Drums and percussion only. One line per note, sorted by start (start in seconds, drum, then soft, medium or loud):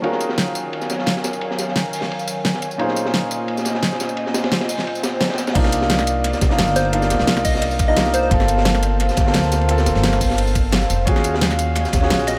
0.04 ride medium
0.12 snare soft
0.20 ride medium
0.20 tambourine medium
0.29 snare medium
0.38 snare loud
0.38 ride medium
0.55 ride medium
0.55 tambourine medium
0.73 ride medium
0.81 snare soft
0.81 tambourine soft
0.90 snare soft
0.90 ride medium
0.90 tambourine medium
0.98 snare soft
1.06 snare loud
1.06 ride medium
1.16 snare soft
1.24 snare medium
1.24 ride medium
1.24 tambourine medium
1.33 ride soft
1.33 tambourine soft
1.41 ride medium
1.51 snare soft
1.58 snare soft
1.58 ride medium
1.58 tambourine medium
1.68 snare soft
1.76 snare loud
1.76 ride medium
1.93 open hi-hat medium
1.93 tambourine medium
2.01 snare soft
2.11 ride medium
2.19 tambourine soft
2.27 ride medium
2.27 tambourine medium
2.45 snare loud
2.45 ride medium
2.54 snare soft
2.62 ride medium
2.62 tambourine medium
2.71 tambourine soft
2.79 ride medium
2.88 snare soft
2.96 ride medium
2.96 tambourine medium
3.06 snare medium
3.14 snare loud
3.14 ride medium
3.31 ride medium
3.31 tambourine medium
3.48 ride medium
3.57 snare soft
3.57 tambourine soft
3.65 snare soft
3.65 ride medium
3.65 tambourine medium
3.74 snare soft
3.82 snare loud
3.82 ride medium
3.92 snare soft
4.00 snare soft
4.00 ride medium
4.00 tambourine medium
4.09 ride soft
4.09 tambourine soft
4.17 ride medium
4.26 snare soft
4.34 snare medium
4.34 ride medium
4.34 tambourine medium
4.44 snare medium
4.44 ride medium
4.52 snare loud
4.52 snare medium
4.52 ride medium
4.61 snare loud
4.61 ride medium
4.69 open hi-hat medium
4.69 tambourine medium
4.78 snare soft
4.78 snare medium
4.87 ride medium
4.95 tambourine soft
5.03 snare medium
5.03 ride medium
5.03 tambourine medium
5.20 snare loud
5.20 ride medium
5.29 snare medium
5.29 ride medium
5.33 snare medium
5.33 ride medium
5.38 snare soft
5.38 ride medium
5.38 tambourine medium
5.47 snare medium
5.47 ride medium
5.47 tambourine soft
5.55 kick loud
5.55 closed hi-hat medium
5.55 crash loud
5.55 ride loud
5.64 snare medium
5.64 snare soft
5.72 closed hi-hat medium
5.72 ride medium
5.72 tambourine medium
5.82 snare medium
5.89 snare loud
5.89 closed hi-hat loud
5.89 ride medium
5.99 snare medium
5.99 tambourine soft
6.07 closed hi-hat medium
6.07 ride medium
6.07 tambourine medium
6.24 snare soft
6.24 closed hi-hat loud
6.24 ride medium
6.33 snare soft
6.33 tambourine soft
6.41 kick loud
6.41 snare soft
6.41 closed hi-hat medium
6.41 ride medium
6.41 tambourine medium
6.50 snare medium
6.58 snare loud
6.58 closed hi-hat loud
6.58 ride medium
6.67 snare medium
6.67 tambourine soft
6.76 snare soft
6.76 closed hi-hat medium
6.76 ride medium
6.76 tambourine medium
6.85 ride soft
6.93 closed hi-hat medium
6.93 ride loud
7.02 snare medium
7.02 tambourine soft
7.10 snare soft
7.10 closed hi-hat medium
7.10 ride medium
7.10 tambourine medium
7.19 snare soft
7.27 snare loud
7.27 closed hi-hat loud
7.27 ride medium
7.37 snare medium
7.37 tambourine soft
7.45 kick medium
7.45 closed hi-hat medium
7.45 open hi-hat medium
7.45 tambourine medium
7.55 snare soft
7.62 closed hi-hat medium
7.62 ride medium
7.71 tambourine soft
7.79 kick loud
7.79 closed hi-hat medium
7.79 ride medium
7.79 tambourine medium
7.97 snare loud
7.97 closed hi-hat medium
7.97 ride medium
8.06 snare soft
8.06 tambourine soft
8.14 closed hi-hat medium
8.14 ride medium
8.14 tambourine medium
8.31 kick loud
8.31 closed hi-hat medium
8.31 ride medium
8.40 snare soft
8.48 closed hi-hat medium
8.48 ride medium
8.48 tambourine medium
8.58 snare medium
8.65 snare loud
8.65 closed hi-hat medium
8.65 ride medium
8.75 snare medium
8.75 tambourine soft
8.83 closed hi-hat medium
8.83 ride medium
8.83 tambourine medium
9.00 snare soft
9.00 closed hi-hat medium
9.00 ride medium
9.09 snare soft
9.09 tambourine soft
9.17 kick loud
9.17 snare medium
9.17 closed hi-hat medium
9.17 ride medium
9.17 tambourine medium
9.27 snare medium
9.34 snare loud
9.34 closed hi-hat medium
9.34 ride loud
9.44 snare soft
9.44 tambourine soft
9.52 snare soft
9.52 closed hi-hat medium
9.52 ride medium
9.52 tambourine medium
9.61 ride soft
9.69 closed hi-hat medium
9.69 ride medium
9.78 snare medium
9.78 tambourine soft
9.85 snare soft
9.85 closed hi-hat medium
9.85 ride medium
9.85 tambourine medium
9.95 snare soft
10.03 snare loud
10.03 closed hi-hat medium
10.03 ride medium
10.13 snare medium
10.13 tambourine soft
10.21 kick medium
10.21 closed hi-hat medium
10.21 open hi-hat medium
10.21 tambourine medium
10.30 snare medium
10.38 closed hi-hat medium
10.38 ride medium
10.47 tambourine soft
10.55 kick loud
10.55 closed hi-hat medium
10.55 ride medium
10.55 tambourine medium
10.72 snare loud
10.72 closed hi-hat medium
10.72 ride medium
10.81 snare soft
10.81 tambourine soft
10.90 closed hi-hat medium
10.90 ride medium
10.90 tambourine medium
11.07 kick loud
11.07 closed hi-hat medium
11.07 ride medium
11.16 snare soft
11.24 closed hi-hat medium
11.24 ride medium
11.24 tambourine medium
11.34 snare medium
11.41 snare loud
11.41 closed hi-hat medium
11.41 ride medium
11.51 snare medium
11.51 tambourine soft
11.59 closed hi-hat medium
11.59 ride medium
11.59 tambourine medium
11.75 snare soft
11.75 closed hi-hat medium
11.75 ride loud
11.85 snare soft
11.85 tambourine soft
11.93 kick loud
11.93 snare medium
11.93 closed hi-hat medium
11.93 ride medium
11.93 tambourine medium
12.03 snare soft
12.10 snare loud
12.10 closed hi-hat medium
12.10 ride loud
12.19 snare soft
12.19 tambourine soft
12.27 snare medium
12.27 closed hi-hat medium
12.27 ride medium
12.27 tambourine medium